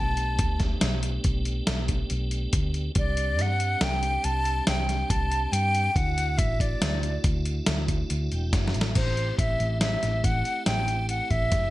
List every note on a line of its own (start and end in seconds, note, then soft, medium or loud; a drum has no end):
0.00 0.40 B1 medium
0.00 2.92 A3 medium
0.00 2.92 B3 medium
0.00 2.92 D4 medium
0.00 2.92 G4 medium
0.00 0.61 A5 medium
0.17 closed hi-hat medium
0.39 0.75 D2 medium
0.39 kick loud
0.39 closed hi-hat medium
0.60 kick medium
0.60 snare soft
0.60 closed hi-hat medium
0.81 1.17 B1 medium
0.81 snare medium
0.81 closed hi-hat medium
1.03 closed hi-hat medium
1.24 1.60 B1 medium
1.24 kick medium
1.24 closed hi-hat medium
1.45 closed hi-hat medium
1.67 2.03 B1 medium
1.67 snare loud
1.67 closed hi-hat medium
1.88 kick medium
1.88 closed hi-hat medium
2.10 2.46 B1 medium
2.10 closed hi-hat medium
2.31 closed hi-hat medium
2.53 2.88 D2 medium
2.53 kick loud
2.53 closed hi-hat loud
2.74 closed hi-hat medium
2.95 3.39 C2 loud
2.95 5.91 G3 medium
2.95 5.91 C4 medium
2.95 5.92 D4 medium
2.95 5.92 G4 medium
2.95 3.43 D5 loud
2.95 kick loud
2.95 closed hi-hat medium
3.17 closed hi-hat medium
3.39 3.74 G2 medium
3.39 3.85 F#5 loud
3.39 snare soft
3.39 closed hi-hat medium
3.60 closed hi-hat medium
3.81 4.17 C2 medium
3.81 4.26 G5 loud
3.81 snare loud
3.81 closed hi-hat medium
4.03 closed hi-hat medium
4.24 4.60 C2 medium
4.24 4.67 A5 loud
4.24 closed hi-hat medium
4.45 closed hi-hat medium
4.67 5.03 C2 loud
4.67 5.11 G5 medium
4.67 snare loud
4.67 closed hi-hat medium
4.89 snare soft
4.89 closed hi-hat medium
5.10 5.45 C2 medium
5.10 5.54 A5 loud
5.10 kick loud
5.10 closed hi-hat medium
5.32 closed hi-hat medium
5.52 5.88 G2 loud
5.52 5.98 G5 loud
5.52 closed hi-hat medium
5.75 closed hi-hat medium
5.95 6.40 D2 loud
5.95 8.91 A3 medium
5.95 8.91 D4 medium
5.95 8.91 E4 medium
5.95 8.91 F#4 medium
5.95 6.39 F#5 loud
5.95 kick loud
5.95 closed hi-hat medium
6.18 closed hi-hat medium
6.38 6.74 A1 medium
6.38 6.62 E5 medium
6.38 kick loud
6.38 closed hi-hat medium
6.60 7.25 D5 medium
6.60 kick medium
6.60 closed hi-hat medium
6.82 7.17 D2 medium
6.82 snare loud
6.82 closed hi-hat medium
7.03 closed hi-hat medium
7.24 7.59 D2 medium
7.24 kick loud
7.24 closed hi-hat medium
7.45 closed hi-hat medium
7.66 8.02 D2 loud
7.66 snare loud
7.66 closed hi-hat medium
7.88 kick medium
7.88 closed hi-hat medium
8.10 8.28 D2 medium
8.10 closed hi-hat medium
8.32 8.51 E1 medium
8.32 8.52 G5 medium
8.32 closed hi-hat medium
8.53 8.72 F#1 medium
8.53 8.73 F#5 medium
8.53 kick loud
8.53 snare medium
8.53 closed hi-hat medium
8.68 snare medium
8.74 8.94 A1 medium
8.74 8.94 E5 medium
8.74 closed hi-hat medium
8.81 snare medium
8.95 9.31 A1 medium
8.95 11.70 A3 medium
8.95 11.70 C4 medium
8.95 11.70 E4 medium
8.95 11.70 G4 medium
8.95 9.36 C5 medium
8.95 kick medium
8.95 closed hi-hat medium
8.95 crash medium
9.17 closed hi-hat medium
9.38 9.56 A1 medium
9.38 9.78 E5 medium
9.38 kick loud
9.38 closed hi-hat medium
9.60 9.95 A1 medium
9.60 closed hi-hat medium
9.81 10.26 E5 medium
9.81 snare medium
9.81 closed hi-hat medium
10.03 10.21 A1 medium
10.03 snare soft
10.03 closed hi-hat medium
10.24 10.42 A1 medium
10.24 10.66 F#5 medium
10.24 kick medium
10.24 closed hi-hat medium
10.45 closed hi-hat medium
10.66 11.20 A1 medium
10.66 11.06 G5 medium
10.66 snare medium
10.66 closed hi-hat medium
10.88 closed hi-hat medium
11.09 11.32 F#5 medium
11.09 closed hi-hat medium
11.31 11.49 A1 medium
11.31 11.70 E5 medium
11.31 kick medium
11.31 closed hi-hat soft
11.52 11.70 F#1 medium
11.52 kick loud
11.52 snare soft
11.52 closed hi-hat medium